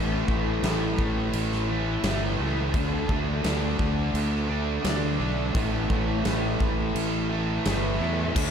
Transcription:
Already playing: fingered electric bass A1, distorted electric guitar A2 E3 A3
0.28 fingered electric bass A1, distorted electric guitar E3 A3, kick
0.63 fingered electric bass A1, distorted electric guitar A2 E3, snare, crash
0.67 distorted electric guitar A3
0.98 fingered electric bass A1, kick
1.33 fingered electric bass A1, crash
1.52 snare
1.68 distorted electric guitar E3 A3
2.03 fingered electric bass G1, distorted electric guitar A2 E3 A3, snare, crash
2.39 fingered electric bass C#2, distorted electric guitar E3 A3
2.73 fingered electric bass D2, distorted electric guitar D3 A3 D4, kick, crash
3.08 fingered electric bass D2, distorted electric guitar A3 D4, kick
3.43 fingered electric bass D2, distorted electric guitar D3 A3 D4, snare, crash
3.79 fingered electric bass D2, kick
4.14 fingered electric bass D2, crash
4.48 distorted electric guitar A3 D4
4.83 fingered electric bass D2, distorted electric guitar D3 A3 D4, snare, crash
5.18 fingered electric bass B1, distorted electric guitar A3 D4
5.53 fingered electric bass A1, distorted electric guitar A2 E3 A3, kick, crash
5.89 fingered electric bass A1, distorted electric guitar E3 A3, kick
6.24 fingered electric bass A1, distorted electric guitar A2 E3 A3, snare, crash
6.60 fingered electric bass A1, kick
6.95 fingered electric bass A1, crash
7.30 distorted electric guitar E3 A3
7.64 fingered electric bass G1, distorted electric guitar A2 E3 A3, snare, crash
7.98 fingered electric bass E2, distorted electric guitar E3 A3
8.34 fingered electric bass D2, distorted electric guitar D3 A3 D4, kick, crash

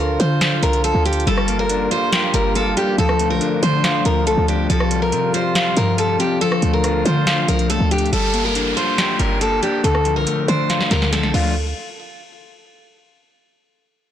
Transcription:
Already playing: 808-style bass D2, brass ensemble D3 F3 F4, steel-string acoustic guitar A#4
0.20 808-style bass D3, steel-string acoustic guitar C5, closed hi-hat
0.41 finger snap, snare, closed hi-hat
0.63 808-style bass C2, steel-string acoustic guitar A#4, closed hi-hat
0.73 closed hi-hat
0.84 steel-string acoustic guitar A4, closed hi-hat
0.95 808-style bass D2
1.05 steel-string acoustic guitar G4, closed hi-hat
1.13 closed hi-hat
1.20 closed hi-hat
1.27 808-style bass G1, brass ensemble G3 A#3, clean electric guitar G3, steel-string acoustic guitar A4, closed hi-hat
1.38 cross-stick
1.48 clean electric guitar A#3, closed hi-hat
1.59 steel-string acoustic guitar A#4
1.69 clean electric guitar D4, closed hi-hat
1.91 clean electric guitar F4, steel-string acoustic guitar C5, closed hi-hat
2.12 clean electric guitar G4, finger snap, snare, closed hi-hat
2.34 808-style bass G1, clean electric guitar G3, steel-string acoustic guitar A#4, closed hi-hat
2.55 clean electric guitar A#3, steel-string acoustic guitar A4, closed hi-hat
2.77 clean electric guitar D4, steel-string acoustic guitar G4, closed hi-hat
2.98 808-style bass D2, brass ensemble D3 F3, clean electric guitar F3, steel-string acoustic guitar A4, closed hi-hat
3.09 cross-stick
3.19 clean electric guitar A3, closed hi-hat
3.30 808-style bass C2, steel-string acoustic guitar A#4
3.41 clean electric guitar D4, closed hi-hat
3.62 808-style bass D3, clean electric guitar F4, steel-string acoustic guitar C5, closed hi-hat
3.84 clean electric guitar F5, finger snap, snare, closed hi-hat
4.05 808-style bass D2, clean electric guitar F3, steel-string acoustic guitar A#4, closed hi-hat
4.27 808-style bass C2, clean electric guitar A3, steel-string acoustic guitar A4, closed hi-hat
4.38 808-style bass D2
4.48 clean electric guitar D4, steel-string acoustic guitar G4, closed hi-hat
4.70 808-style bass C2, brass ensemble C3 G3 F4, clean electric guitar F3, steel-string acoustic guitar A4, closed hi-hat
4.80 cross-stick
4.91 clean electric guitar G3, closed hi-hat
5.02 steel-string acoustic guitar A#4
5.12 808-style bass C3, clean electric guitar C4, closed hi-hat
5.34 clean electric guitar F4, steel-string acoustic guitar C5, closed hi-hat
5.55 clean electric guitar F5, finger snap, snare, closed hi-hat
5.77 808-style bass G2, clean electric guitar F3, steel-string acoustic guitar A#4, closed hi-hat
5.98 clean electric guitar G3, steel-string acoustic guitar A4, closed hi-hat
6.19 clean electric guitar C4, steel-string acoustic guitar G4, closed hi-hat
6.41 brass ensemble D3 F3 F4, clean electric guitar F3, steel-string acoustic guitar A4, closed hi-hat
6.52 cross-stick
6.62 808-style bass D2, clean electric guitar A3, closed hi-hat
6.73 steel-string acoustic guitar A#4
6.84 clean electric guitar D4, cross-stick, closed hi-hat
7.06 808-style bass D3, clean electric guitar F4, steel-string acoustic guitar C5, closed hi-hat
7.27 clean electric guitar F5, finger snap, snare, closed hi-hat
7.48 808-style bass C2, clean electric guitar F3, steel-string acoustic guitar A#4, closed hi-hat
7.59 closed hi-hat
7.70 clean electric guitar A3, steel-string acoustic guitar A4, closed hi-hat
7.80 808-style bass D2
7.91 clean electric guitar D4, steel-string acoustic guitar G4, closed hi-hat
7.98 closed hi-hat
8.06 closed hi-hat
8.12 808-style bass G1, clean electric guitar G3, steel-string acoustic guitar A4, closed hi-hat, downlifter
8.34 clean electric guitar A#3, closed hi-hat
8.45 steel-string acoustic guitar A#4
8.55 clean electric guitar D4, closed hi-hat
8.77 clean electric guitar F4, steel-string acoustic guitar C5, closed hi-hat
8.98 clean electric guitar G4, finger snap, snare, closed hi-hat
9.19 808-style bass G1, clean electric guitar G3, steel-string acoustic guitar A#4, closed hi-hat
9.41 clean electric guitar A#3, steel-string acoustic guitar A4, closed hi-hat
9.63 clean electric guitar D4, steel-string acoustic guitar G4, closed hi-hat
9.84 808-style bass D2, clean electric guitar D3, steel-string acoustic guitar A4, closed hi-hat
9.95 cross-stick
10.05 clean electric guitar F3, closed hi-hat
10.16 808-style bass C2, steel-string acoustic guitar A#4
10.27 clean electric guitar A3, closed hi-hat
10.48 808-style bass D3, clean electric guitar D4, steel-string acoustic guitar C5, closed hi-hat
10.70 clean electric guitar F4, snare, closed hi-hat
10.81 snare
10.91 808-style bass D2, clean electric guitar D3, steel-string acoustic guitar A#4, snare, closed hi-hat
11.02 snare
11.13 clean electric guitar F3, steel-string acoustic guitar A4, snare, closed hi-hat
11.23 808-style bass C2, snare
11.34 808-style bass D2, clean electric guitar F3 A3 D4 F4, steel-string acoustic guitar F4, crash

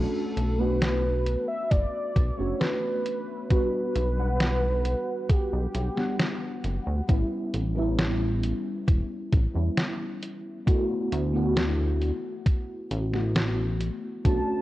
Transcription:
Already playing: fm electric piano A3 C#4 D4 F#4, soft synth lead A4
0.37 analog synth bass B1, closed hi-hat
0.58 fm electric piano A3 B3 D4 F#4, soft synth lead B4
0.82 snare, closed hi-hat
1.27 closed hi-hat
1.48 soft synth lead E5
1.71 analog synth bass F#1, soft synth lead D5, kick, closed hi-hat
2.16 analog synth bass B1, kick, closed hi-hat
2.37 analog synth bass F#1, fm electric piano A3 C#4 D4 F#4, soft synth lead C#5
2.60 soft synth lead B4, snare, closed hi-hat
3.06 closed hi-hat
3.50 fm electric piano G3 B3 D4 F#4, soft synth lead B4, kick, closed hi-hat
3.95 analog synth bass B1, closed hi-hat
4.17 fm electric piano G3 B3 D4 F#5
4.40 snare, closed hi-hat
4.85 closed hi-hat
5.29 soft synth lead G4, kick, closed hi-hat
5.52 analog synth bass B1
5.75 analog synth bass B1, closed hi-hat
5.96 fm electric piano G3 B3 D4 F#5, snare
6.19 snare, closed hi-hat
6.64 analog synth bass F#1, closed hi-hat
6.87 analog synth bass D2
7.08 analog synth bass A1, fm electric piano G3 B3 C#4 E4, kick, closed hi-hat
7.54 analog synth bass A1, closed hi-hat
7.75 fm electric piano G3 B3 C#4 E4
7.98 snare, closed hi-hat
8.43 closed hi-hat
8.88 analog synth bass E1, kick, closed hi-hat
9.33 analog synth bass A1, kick, closed hi-hat
9.54 analog synth bass E2, fm electric piano G3 B3 C#4 E4
9.78 snare, closed hi-hat
10.23 closed hi-hat
10.66 fm electric piano A3 B3 E4 F#4, kick, closed hi-hat
11.12 analog synth bass D2, closed hi-hat
11.33 fm electric piano A3 B3 E4 F#4
11.57 snare, closed hi-hat
12.02 closed hi-hat
12.46 kick, closed hi-hat
12.91 analog synth bass A1, closed hi-hat
13.12 fm electric piano A3 B3 E4 F#4, snare
13.36 snare, closed hi-hat
13.81 closed hi-hat
14.25 analog synth bass B1, fm electric piano A3 C#4 D4 F#4, soft synth lead A5, kick, closed hi-hat

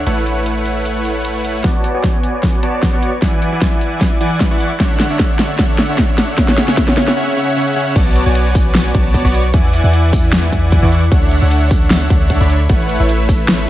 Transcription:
0.06 808-style bass A1, supersaw synth A3 E4 B4 C#5 F#5, closed hi-hat
0.26 closed hi-hat
0.46 closed hi-hat
0.66 closed hi-hat
0.85 closed hi-hat
1.05 closed hi-hat
1.25 closed hi-hat
1.44 closed hi-hat
1.64 808-style bass B1, supersaw synth B3 F#4 C#5 D5 A5, kick, snare, closed hi-hat
1.84 closed hi-hat
1.94 808-style bass B1, supersaw synth B3 F#4 C#5 D5 G#5
2.04 kick, snare, closed hi-hat
2.23 closed hi-hat
2.43 kick, snare, closed hi-hat
2.63 808-style bass B1, supersaw synth B3 F#4 C#5 D5 A5, closed hi-hat
2.83 kick, snare, closed hi-hat
2.93 808-style bass B1, supersaw synth B3 F#4 C#5 D5 C#6
3.02 closed hi-hat
3.22 808-style bass E2, supersaw synth E3 E4 D5 F#5 G#5, kick, snare, closed hi-hat
3.42 closed hi-hat
3.52 808-style bass E2, supersaw synth E3 E4 D5 F#5 G#5
3.61 kick, snare, closed hi-hat
3.81 closed hi-hat
4.01 kick, snare, closed hi-hat
4.21 808-style bass E2, supersaw synth E3 E4 D5 F#5 G#5, closed hi-hat
4.40 kick, snare, closed hi-hat
4.51 808-style bass E2, supersaw synth E3 E4 D5 F#5 C#6
4.60 closed hi-hat
4.80 supersaw synth D3 D4 C#5 E5 F#5, kick, snare, closed hi-hat
5.00 snare, closed hi-hat
5.10 808-style bass D2, supersaw synth D3 D4 C#5 E5 F#5
5.19 kick, snare, closed hi-hat
5.39 snare, closed hi-hat
5.59 supersaw synth D3 D4 C#5 E5 F#5, kick, snare, closed hi-hat
5.78 snare, closed hi-hat
5.89 808-style bass D2, supersaw synth D3 D4 C#5 E5 F#5
5.98 kick, snare, closed hi-hat
6.18 snare, closed hi-hat
6.38 supersaw synth C#3 C#4 C#5 E5 F#5, kick, snare, closed hi-hat
6.48 snare
6.58 snare, closed hi-hat
6.68 supersaw synth C#3 C#4 C#5 E5 F#5, snare
6.77 supersaw synth C#3 C#4 C#5 E5 F#5, kick, snare, closed hi-hat
6.88 snare
6.97 snare, closed hi-hat
7.07 supersaw synth C#3 C#4 C#5 E5 F#5, snare
7.17 supersaw synth C#3 C#4 C#5 E5 F#5
7.37 supersaw synth C#3 C#4 C#5 E5 F#5
7.56 supersaw synth C#3 C#4 C#5 E5 F#5
7.76 supersaw synth C#3 C#4 C#5 E5 F#5
7.96 808-style bass B1, supersaw synth B3 F#4 C#5 D5 A5, kick, closed hi-hat, crash
8.16 closed hi-hat
8.26 808-style bass B1, supersaw synth B3 F#4 C#5 D5 G#5
8.35 closed hi-hat
8.55 kick, open hi-hat
8.75 snare, closed hi-hat
8.94 808-style bass B1, supersaw synth B3 F#4 C#5 D5 A5, kick, closed hi-hat
9.14 kick, closed hi-hat
9.25 808-style bass B1, supersaw synth B3 F#4 C#5 D5 C#6
9.34 closed hi-hat
9.54 808-style bass E2, supersaw synth E3 E4 D5 F#5 G#5, kick, closed hi-hat
9.73 closed hi-hat
9.84 808-style bass E2, supersaw synth E3 E4 D5 F#5 G#5
9.93 closed hi-hat
10.13 kick, open hi-hat
10.33 snare, closed hi-hat
10.52 808-style bass E2, supersaw synth E3 E4 D5 F#5 G#5, kick, closed hi-hat
10.72 kick, closed hi-hat
10.83 808-style bass E2, supersaw synth E3 E4 D5 F#5 C#6
10.92 closed hi-hat
11.12 808-style bass D2, supersaw synth D3 D4 C#5 E5 F#5, kick, closed hi-hat
11.31 closed hi-hat
11.42 808-style bass D2, supersaw synth D3 D4 C#5 E5 F#5
11.51 closed hi-hat
11.71 kick, open hi-hat
11.90 snare, closed hi-hat
12.10 808-style bass D2, supersaw synth D3 D4 C#5 E5 F#5, kick, closed hi-hat
12.30 kick, closed hi-hat
12.41 808-style bass D2, supersaw synth D3 D4 C#5 E5 B5
12.50 closed hi-hat
12.69 808-style bass A1, supersaw synth A3 E4 B4 C#5 F#5, kick, closed hi-hat
12.89 closed hi-hat
13.00 808-style bass A1, supersaw synth A3 E4 B4 C#5 E5
13.09 closed hi-hat
13.29 kick, open hi-hat
13.48 snare, closed hi-hat

